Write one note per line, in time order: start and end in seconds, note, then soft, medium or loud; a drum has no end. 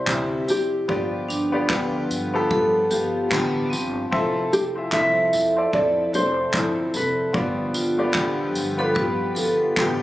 0.00 0.90 C4 medium
0.00 0.91 E4 medium
0.00 0.89 G4 medium
0.00 0.90 A4 medium
0.00 0.51 C5 medium
0.00 0.47 E5 medium
0.06 0.41 D2 medium
0.06 0.47 C3 medium
0.06 0.48 G3 medium
0.06 0.48 C4 medium
0.06 0.47 E4 medium
0.06 0.46 G4 loud
0.06 kick loud
0.06 clap loud
0.47 0.81 F1 medium
0.47 0.88 C4 soft
0.47 0.89 E4 medium
0.47 0.88 G4 medium
0.47 2.07 G4 medium
0.47 tambourine medium
0.88 1.22 G1 loud
0.88 1.68 G2 medium
0.88 1.69 D3 medium
0.88 1.69 F3 medium
0.88 1.43 B3 medium
0.88 1.70 B3 medium
0.88 1.43 F4 medium
0.88 1.70 F4 medium
0.88 1.43 G4 medium
0.88 1.70 G4 medium
0.88 1.44 D5 medium
0.88 kick loud
1.29 1.63 G1 medium
1.29 1.71 D4 medium
1.29 tambourine medium
1.52 2.20 B3 medium
1.52 2.21 F4 medium
1.52 2.21 G4 medium
1.52 2.21 D5 medium
1.69 2.03 D2 loud
1.69 2.50 G2 medium
1.69 2.51 D3 medium
1.69 2.49 F3 medium
1.69 2.50 B3 medium
1.69 2.51 F4 loud
1.69 2.51 G4 loud
1.69 2.53 B4 loud
1.69 kick loud
1.69 clap loud
2.11 2.44 G2 medium
2.11 tambourine medium
2.34 3.70 B3 medium
2.34 3.70 F4 medium
2.34 3.70 G4 medium
2.34 3.71 A4 loud
2.50 2.84 G2 loud
2.50 2.90 F3 medium
2.50 2.91 B3 medium
2.50 2.91 F4 medium
2.50 2.90 G4 medium
2.50 2.92 A4 loud
2.50 kick loud
2.91 3.24 G1 medium
2.91 3.30 F3 medium
2.91 3.30 B3 medium
2.91 3.31 F4 medium
2.91 3.68 G4 loud
2.91 3.31 G4 medium
2.91 tambourine medium
3.30 3.64 A1 medium
3.30 3.71 G2 medium
3.30 3.71 D3 loud
3.30 3.71 F3 loud
3.30 3.72 B3 loud
3.30 3.71 F4 medium
3.30 3.70 G4 loud
3.30 kick loud
3.30 clap loud
3.66 3.71 B3 medium
3.70 4.05 G1 loud
3.70 4.10 F3 medium
3.70 4.31 C4 medium
3.70 4.12 F4 medium
3.70 4.12 G4 medium
3.70 tambourine medium
4.11 4.45 F1 loud
4.11 4.92 F3 medium
4.11 4.66 C4 medium
4.11 4.91 C4 loud
4.11 4.92 E4 medium
4.11 4.66 F4 medium
4.11 4.67 A4 medium
4.11 4.93 A4 medium
4.11 4.67 E5 medium
4.11 kick loud
4.53 4.86 F1 loud
4.53 4.64 G4 medium
4.53 tambourine medium
4.75 5.43 C4 medium
4.75 5.44 F4 medium
4.75 4.82 G#4 medium
4.75 5.44 E5 medium
4.84 5.47 A4 medium
4.92 5.26 C2 loud
4.92 5.72 F3 medium
4.92 5.72 C4 medium
4.92 5.73 E4 medium
4.92 5.74 A4 loud
4.92 5.74 E5 loud
4.92 kick loud
4.92 clap loud
5.33 5.66 F2 loud
5.33 tambourine medium
5.56 6.92 C4 medium
5.56 6.92 F4 medium
5.56 6.93 A4 medium
5.56 6.93 D5 medium
5.73 6.06 F2 loud
5.73 6.13 F3 medium
5.73 6.14 C4 medium
5.73 6.13 E4 medium
5.73 6.12 A4 medium
5.73 6.15 D5 loud
5.73 kick loud
6.13 6.46 F1 loud
6.13 6.53 C4 soft
6.13 6.54 E4 medium
6.13 6.54 A4 medium
6.13 6.96 C5 loud
6.13 tambourine medium
6.53 6.87 G1 medium
6.53 6.94 F3 medium
6.53 6.94 C4 medium
6.53 6.94 E4 medium
6.53 6.93 A4 medium
6.53 kick loud
6.53 clap loud
6.94 7.27 F1 loud
6.94 7.35 C4 soft
6.94 7.35 E4 medium
6.94 7.35 A4 medium
6.94 8.53 B4 medium
6.94 tambourine medium
7.33 7.68 G1 loud
7.33 8.13 G2 medium
7.33 8.13 D3 medium
7.33 8.14 F3 medium
7.33 7.88 B3 medium
7.33 8.14 B3 medium
7.33 7.89 F4 medium
7.33 8.15 F4 medium
7.33 7.89 G4 medium
7.33 8.15 G4 medium
7.33 7.89 D5 medium
7.33 kick loud
7.74 8.08 G1 medium
7.74 8.16 F4 medium
7.74 tambourine medium
7.97 8.03 A3 medium
7.97 8.66 F4 medium
7.97 8.66 G4 medium
7.97 8.67 D5 medium
8.04 8.69 B3 medium
8.13 8.56 D2 loud
8.13 8.96 G2 medium
8.13 8.96 D3 medium
8.13 8.94 F3 medium
8.13 8.96 B3 loud
8.13 8.96 F4 loud
8.13 8.81 G4 medium
8.13 8.98 G4 loud
8.13 kick loud
8.13 clap loud
8.55 8.89 G2 loud
8.55 tambourine medium
8.78 10.02 B3 medium
8.78 10.02 F4 medium
8.78 10.02 G4 medium
8.78 8.96 A4 medium
8.78 10.02 B4 medium
8.95 9.29 G2 medium
8.95 9.36 F3 medium
8.95 9.36 B3 medium
8.95 9.35 F4 medium
8.95 9.34 G4 medium
8.95 9.37 B4 loud
8.95 kick loud
9.35 9.70 G1 medium
9.35 9.77 F3 medium
9.35 9.77 B3 medium
9.35 9.77 F4 medium
9.35 9.76 G4 medium
9.35 9.77 A4 medium
9.35 tambourine medium
9.77 10.02 A1 loud
9.77 10.02 G2 medium
9.77 10.02 D3 medium
9.77 10.02 F3 medium
9.77 10.02 B3 medium
9.77 10.02 F4 medium
9.77 10.02 G4 medium
9.77 10.02 G4 loud
9.77 kick loud
9.77 clap loud